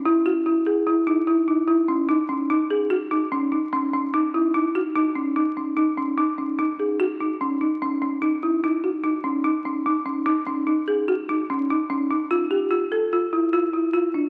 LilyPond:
\new Staff \with { instrumentName = "Marimba" } { \time 5/4 \key ees \phrygian \tempo 4 = 147 e'8 ges'8 e'8 gis'8 e'8 dis'8 e'8 dis'8 e'8 des'8 | ees'8 des'8 ees'8 aes'8 ges'8 ees'8 des'8 ees'8 des'8 des'8 | ees'8 fes'8 ees'8 ges'8 ees'8 des'8 ees'8 des'8 ees'8 des'8 | ees'8 des'8 ees'8 aes'8 ges'8 ees'8 des'8 ees'8 des'8 des'8 |
ees'8 fes'8 ees'8 ges'8 ees'8 des'8 ees'8 des'8 ees'8 des'8 | ees'8 des'8 ees'8 aes'8 ges'8 ees'8 des'8 ees'8 des'8 ees'8 | f'8 g'8 f'8 a'8 f'8 e'8 f'8 e'8 f'8 d'8 | }